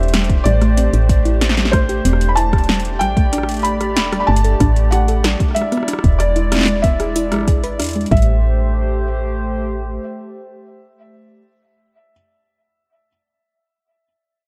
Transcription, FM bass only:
0, 0, Header, 1, 2, 480
1, 0, Start_track
1, 0, Key_signature, 0, "minor"
1, 0, Tempo, 638298
1, 342, Time_signature, 4, 2, 24, 8
1, 10883, End_track
2, 0, Start_track
2, 0, Title_t, "FM bass"
2, 0, Program_c, 0, 39
2, 0, Note_on_c, 0, 28, 101
2, 309, Note_off_c, 0, 28, 0
2, 343, Note_on_c, 0, 33, 104
2, 670, Note_off_c, 0, 33, 0
2, 702, Note_on_c, 0, 33, 87
2, 1510, Note_off_c, 0, 33, 0
2, 1542, Note_on_c, 0, 28, 89
2, 2262, Note_on_c, 0, 33, 90
2, 2274, Note_off_c, 0, 28, 0
2, 2983, Note_on_c, 0, 28, 95
2, 2994, Note_off_c, 0, 33, 0
2, 3182, Note_off_c, 0, 28, 0
2, 3222, Note_on_c, 0, 31, 94
2, 3422, Note_off_c, 0, 31, 0
2, 3462, Note_on_c, 0, 33, 101
2, 4030, Note_off_c, 0, 33, 0
2, 4542, Note_on_c, 0, 28, 87
2, 5502, Note_on_c, 0, 32, 81
2, 5513, Note_off_c, 0, 28, 0
2, 5862, Note_on_c, 0, 40, 92
2, 5873, Note_off_c, 0, 32, 0
2, 6061, Note_off_c, 0, 40, 0
2, 6102, Note_on_c, 0, 33, 99
2, 7512, Note_off_c, 0, 33, 0
2, 10883, End_track
0, 0, End_of_file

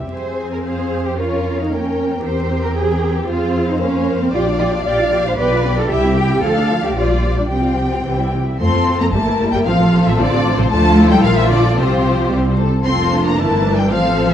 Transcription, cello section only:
0, 0, Header, 1, 2, 480
1, 0, Start_track
1, 0, Key_signature, -4, "minor"
1, 0, Tempo, 526316
1, 109, Time_signature, 2, 2, 24, 8
1, 3958, Key_signature, -1, "major"
1, 5867, Tempo, 540054
1, 8267, Tempo, 530504
1, 12976, End_track
2, 0, Start_track
2, 0, Title_t, "Cello section"
2, 0, Program_c, 0, 48
2, 103, Note_on_c, 0, 72, 70
2, 442, Note_off_c, 0, 72, 0
2, 474, Note_on_c, 0, 70, 61
2, 521, Note_off_c, 0, 70, 0
2, 584, Note_on_c, 0, 68, 66
2, 942, Note_off_c, 0, 68, 0
2, 961, Note_on_c, 0, 67, 64
2, 1074, Note_on_c, 0, 65, 72
2, 1078, Note_off_c, 0, 67, 0
2, 1438, Note_off_c, 0, 65, 0
2, 1453, Note_on_c, 0, 63, 65
2, 1566, Note_on_c, 0, 61, 67
2, 1567, Note_off_c, 0, 63, 0
2, 1924, Note_off_c, 0, 61, 0
2, 1932, Note_on_c, 0, 60, 65
2, 2038, Note_on_c, 0, 72, 79
2, 2047, Note_off_c, 0, 60, 0
2, 2400, Note_off_c, 0, 72, 0
2, 2409, Note_on_c, 0, 70, 74
2, 2520, Note_on_c, 0, 68, 73
2, 2526, Note_off_c, 0, 70, 0
2, 2875, Note_off_c, 0, 68, 0
2, 2889, Note_on_c, 0, 67, 79
2, 2996, Note_on_c, 0, 65, 81
2, 3006, Note_off_c, 0, 67, 0
2, 3351, Note_off_c, 0, 65, 0
2, 3366, Note_on_c, 0, 63, 73
2, 3475, Note_on_c, 0, 61, 83
2, 3483, Note_off_c, 0, 63, 0
2, 3829, Note_off_c, 0, 61, 0
2, 3844, Note_on_c, 0, 60, 78
2, 3890, Note_off_c, 0, 60, 0
2, 3951, Note_on_c, 0, 65, 92
2, 4024, Note_off_c, 0, 65, 0
2, 4190, Note_on_c, 0, 65, 96
2, 4263, Note_off_c, 0, 65, 0
2, 4427, Note_on_c, 0, 74, 97
2, 4781, Note_off_c, 0, 74, 0
2, 4803, Note_on_c, 0, 72, 97
2, 4848, Note_off_c, 0, 72, 0
2, 4911, Note_on_c, 0, 71, 108
2, 5262, Note_off_c, 0, 71, 0
2, 5281, Note_on_c, 0, 69, 94
2, 5386, Note_on_c, 0, 67, 101
2, 5394, Note_off_c, 0, 69, 0
2, 5862, Note_on_c, 0, 69, 103
2, 5866, Note_off_c, 0, 67, 0
2, 6211, Note_off_c, 0, 69, 0
2, 6226, Note_on_c, 0, 67, 78
2, 6334, Note_on_c, 0, 65, 82
2, 6339, Note_off_c, 0, 67, 0
2, 6697, Note_off_c, 0, 65, 0
2, 6704, Note_on_c, 0, 62, 68
2, 6752, Note_off_c, 0, 62, 0
2, 6817, Note_on_c, 0, 60, 70
2, 7531, Note_off_c, 0, 60, 0
2, 7788, Note_on_c, 0, 60, 86
2, 8122, Note_off_c, 0, 60, 0
2, 8146, Note_on_c, 0, 58, 75
2, 8265, Note_on_c, 0, 57, 79
2, 8266, Note_off_c, 0, 58, 0
2, 8619, Note_off_c, 0, 57, 0
2, 8627, Note_on_c, 0, 55, 73
2, 8747, Note_off_c, 0, 55, 0
2, 8751, Note_on_c, 0, 53, 90
2, 9100, Note_off_c, 0, 53, 0
2, 9104, Note_on_c, 0, 52, 81
2, 9220, Note_on_c, 0, 50, 79
2, 9224, Note_off_c, 0, 52, 0
2, 9571, Note_off_c, 0, 50, 0
2, 9582, Note_on_c, 0, 48, 85
2, 9698, Note_on_c, 0, 57, 113
2, 9699, Note_off_c, 0, 48, 0
2, 10045, Note_off_c, 0, 57, 0
2, 10058, Note_on_c, 0, 55, 97
2, 10170, Note_on_c, 0, 53, 107
2, 10174, Note_off_c, 0, 55, 0
2, 10290, Note_on_c, 0, 52, 88
2, 10291, Note_off_c, 0, 53, 0
2, 10339, Note_off_c, 0, 52, 0
2, 10410, Note_on_c, 0, 50, 93
2, 10483, Note_off_c, 0, 50, 0
2, 10650, Note_on_c, 0, 48, 82
2, 11365, Note_off_c, 0, 48, 0
2, 11617, Note_on_c, 0, 60, 92
2, 11958, Note_off_c, 0, 60, 0
2, 11981, Note_on_c, 0, 58, 83
2, 12102, Note_off_c, 0, 58, 0
2, 12102, Note_on_c, 0, 57, 91
2, 12463, Note_on_c, 0, 55, 83
2, 12464, Note_off_c, 0, 57, 0
2, 12584, Note_on_c, 0, 53, 92
2, 12585, Note_off_c, 0, 55, 0
2, 12944, Note_off_c, 0, 53, 0
2, 12945, Note_on_c, 0, 52, 83
2, 12976, Note_off_c, 0, 52, 0
2, 12976, End_track
0, 0, End_of_file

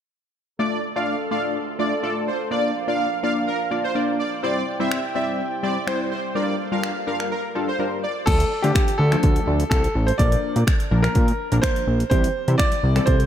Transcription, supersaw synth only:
0, 0, Header, 1, 2, 480
1, 0, Start_track
1, 0, Key_signature, -1, "minor"
1, 0, Tempo, 480000
1, 593, Time_signature, 4, 2, 24, 8
1, 13263, End_track
2, 0, Start_track
2, 0, Title_t, "Supersaw synth"
2, 0, Program_c, 0, 81
2, 593, Note_on_c, 0, 74, 94
2, 770, Note_off_c, 0, 74, 0
2, 962, Note_on_c, 0, 77, 83
2, 1138, Note_off_c, 0, 77, 0
2, 1314, Note_on_c, 0, 77, 85
2, 1408, Note_off_c, 0, 77, 0
2, 1794, Note_on_c, 0, 74, 90
2, 1971, Note_off_c, 0, 74, 0
2, 2034, Note_on_c, 0, 69, 87
2, 2127, Note_off_c, 0, 69, 0
2, 2275, Note_on_c, 0, 72, 71
2, 2368, Note_off_c, 0, 72, 0
2, 2514, Note_on_c, 0, 74, 95
2, 2690, Note_off_c, 0, 74, 0
2, 2882, Note_on_c, 0, 77, 81
2, 3058, Note_off_c, 0, 77, 0
2, 3233, Note_on_c, 0, 77, 79
2, 3326, Note_off_c, 0, 77, 0
2, 3473, Note_on_c, 0, 70, 88
2, 3566, Note_off_c, 0, 70, 0
2, 3840, Note_on_c, 0, 72, 75
2, 3923, Note_off_c, 0, 72, 0
2, 4194, Note_on_c, 0, 74, 75
2, 4287, Note_off_c, 0, 74, 0
2, 4434, Note_on_c, 0, 74, 96
2, 4610, Note_off_c, 0, 74, 0
2, 4798, Note_on_c, 0, 76, 80
2, 4976, Note_off_c, 0, 76, 0
2, 5153, Note_on_c, 0, 76, 82
2, 5246, Note_off_c, 0, 76, 0
2, 5631, Note_on_c, 0, 74, 86
2, 5809, Note_off_c, 0, 74, 0
2, 5872, Note_on_c, 0, 72, 89
2, 5966, Note_off_c, 0, 72, 0
2, 6112, Note_on_c, 0, 72, 71
2, 6206, Note_off_c, 0, 72, 0
2, 6351, Note_on_c, 0, 74, 92
2, 6529, Note_off_c, 0, 74, 0
2, 6718, Note_on_c, 0, 77, 81
2, 6896, Note_off_c, 0, 77, 0
2, 7070, Note_on_c, 0, 77, 78
2, 7165, Note_off_c, 0, 77, 0
2, 7313, Note_on_c, 0, 70, 89
2, 7407, Note_off_c, 0, 70, 0
2, 7679, Note_on_c, 0, 72, 77
2, 7763, Note_off_c, 0, 72, 0
2, 8032, Note_on_c, 0, 74, 73
2, 8126, Note_off_c, 0, 74, 0
2, 13263, End_track
0, 0, End_of_file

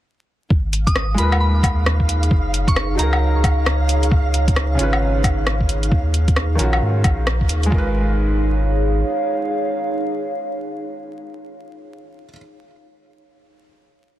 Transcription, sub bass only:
0, 0, Header, 1, 2, 480
1, 0, Start_track
1, 0, Tempo, 451128
1, 537, Time_signature, 4, 2, 24, 8
1, 15100, End_track
2, 0, Start_track
2, 0, Title_t, "Sub bass"
2, 0, Program_c, 0, 38
2, 536, Note_on_c, 0, 32, 95
2, 1245, Note_off_c, 0, 32, 0
2, 1259, Note_on_c, 0, 39, 82
2, 2447, Note_off_c, 0, 39, 0
2, 2457, Note_on_c, 0, 30, 97
2, 3166, Note_off_c, 0, 30, 0
2, 3181, Note_on_c, 0, 37, 81
2, 4368, Note_off_c, 0, 37, 0
2, 4377, Note_on_c, 0, 37, 94
2, 5085, Note_off_c, 0, 37, 0
2, 5099, Note_on_c, 0, 32, 81
2, 6286, Note_off_c, 0, 32, 0
2, 6294, Note_on_c, 0, 39, 96
2, 7004, Note_off_c, 0, 39, 0
2, 7013, Note_on_c, 0, 34, 84
2, 7241, Note_off_c, 0, 34, 0
2, 7255, Note_on_c, 0, 44, 99
2, 7487, Note_off_c, 0, 44, 0
2, 7494, Note_on_c, 0, 34, 89
2, 7964, Note_off_c, 0, 34, 0
2, 7977, Note_on_c, 0, 39, 92
2, 8202, Note_off_c, 0, 39, 0
2, 8214, Note_on_c, 0, 32, 97
2, 9613, Note_off_c, 0, 32, 0
2, 15100, End_track
0, 0, End_of_file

